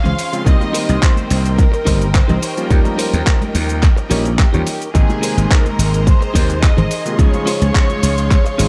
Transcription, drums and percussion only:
0.05 closed hi-hat, low conga, shaker
0.19 open hi-hat, shaker
0.33 closed hi-hat, shaker
0.46 kick, closed hi-hat, shaker
0.61 closed hi-hat, high bongo, high conga, shaker
0.74 open hi-hat, shaker
0.89 closed hi-hat, shaker
1.02 kick, clap, closed hi-hat, shaker
1.16 closed hi-hat, high conga, shaker
1.30 open hi-hat, shaker
1.46 closed hi-hat, shaker
1.58 kick, closed hi-hat, shaker
1.74 closed hi-hat, shaker
1.86 kick, open hi-hat, shaker
2.02 closed hi-hat, shaker
2.15 kick, clap, closed hi-hat, shaker
2.29 closed hi-hat, low conga, shaker
2.43 open hi-hat, shaker
2.57 closed hi-hat, shaker
2.71 kick, closed hi-hat, shaker
2.85 closed hi-hat, high bongo, high conga, shaker
2.99 open hi-hat, shaker
3.14 closed hi-hat, shaker
3.27 kick, clap, closed hi-hat, shaker
3.42 closed hi-hat, high conga, shaker
3.55 open hi-hat, shaker
3.69 closed hi-hat, shaker
3.83 kick, clap, closed hi-hat, shaker
3.97 closed hi-hat, shaker
4.11 open hi-hat, shaker
4.25 closed hi-hat, high bongo, shaker
4.39 kick, clap, closed hi-hat, shaker
4.54 closed hi-hat, low conga, shaker
4.67 open hi-hat, shaker
4.82 closed hi-hat, shaker
4.95 kick, closed hi-hat, shaker
5.09 closed hi-hat, high bongo, high conga, shaker
5.23 open hi-hat, shaker
5.38 closed hi-hat, shaker
5.51 kick, clap, closed hi-hat, shaker
5.65 closed hi-hat, high conga, shaker
5.79 open hi-hat, shaker
5.94 closed hi-hat, shaker
6.07 kick, closed hi-hat, shaker
6.22 closed hi-hat, shaker
6.35 kick, open hi-hat, shaker
6.50 closed hi-hat, shaker
6.63 kick, clap, closed hi-hat, shaker
6.78 closed hi-hat, low conga, shaker
6.91 open hi-hat, shaker
7.06 closed hi-hat, shaker
7.19 kick, closed hi-hat, shaker
7.34 closed hi-hat, high bongo, high conga, shaker
7.47 open hi-hat, shaker
7.62 closed hi-hat, shaker
7.75 kick, clap, closed hi-hat, shaker
7.90 closed hi-hat, high conga, shaker
8.03 open hi-hat, shaker
8.18 closed hi-hat, shaker
8.31 kick, clap, closed hi-hat, shaker
8.46 closed hi-hat, shaker
8.59 open hi-hat, shaker

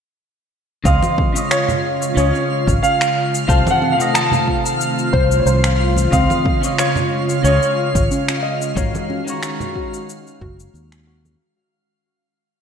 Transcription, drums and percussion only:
0.85 kick, cabasa
1.03 high conga, cabasa
1.18 kick, high conga
1.36 cabasa
1.51 finger snap, cabasa
1.69 low conga, cabasa
2.02 cabasa
2.17 cabasa
2.35 cabasa
2.67 kick, cabasa
2.84 cabasa
3.01 finger snap, cabasa
3.35 cabasa
3.49 kick, cabasa
3.67 high conga, cabasa
3.82 high conga
4.00 cabasa
4.15 finger snap, cabasa
4.32 low conga, cabasa
4.48 kick
4.66 cabasa
4.81 cabasa
4.99 cabasa
5.14 kick, low conga
5.31 cabasa
5.47 cabasa
5.64 finger snap, cabasa
5.97 high conga, cabasa
6.13 kick, cabasa
6.30 high conga, cabasa
6.45 kick, high conga
6.64 cabasa
6.78 finger snap, cabasa
6.96 low conga, cabasa
7.29 cabasa
7.45 cabasa
7.62 cabasa
7.95 kick, cabasa
8.11 cabasa
8.28 finger snap, cabasa
8.62 cabasa
8.77 kick, cabasa
8.95 high conga, cabasa
9.10 high conga
9.28 cabasa
9.43 finger snap, cabasa
9.60 low conga, cabasa
9.75 kick
9.94 cabasa
10.09 cabasa
10.27 cabasa
10.41 kick, low conga
10.60 cabasa
10.75 cabasa
10.92 finger snap, cabasa
11.25 high conga, cabasa

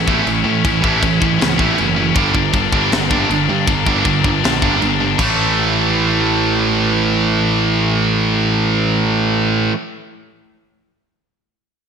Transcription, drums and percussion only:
0.08 kick
0.27 china
0.65 kick, china
0.84 kick
1.03 kick, china
1.22 kick
1.41 snare, china
1.59 kick
1.78 china
2.16 kick, china
2.35 kick
2.54 kick, china
2.73 kick
2.92 snare, china
3.11 kick
3.31 china
3.68 kick, china
3.86 kick
4.05 kick, china
4.24 kick
4.44 snare, china
4.62 kick
4.82 china
5.19 kick, crash

